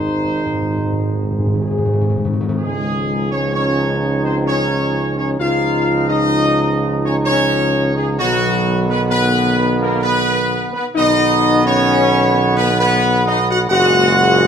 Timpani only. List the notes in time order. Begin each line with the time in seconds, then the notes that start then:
0.08 G#2
0.16 G#2
0.24 G#2
0.39 G#2
0.46 G#2
0.54 G#2
0.62 G#2
0.70 G#2
0.77 G#2
0.85 G#2
0.93 G#2
1.00 G#2
1.08 G#2
1.16 G#2
1.24 G#2
1.31 G#2
1.39 G#2
1.47 G#2
1.55 G#2
1.62 G#2
1.71 G#2
1.78 G#2
1.86 G#2
1.94 G#2
2.01 G#2
2.10 G#2
2.17 G#2
2.25 G#2
2.33 G#2
2.41 G#2
2.49 G#2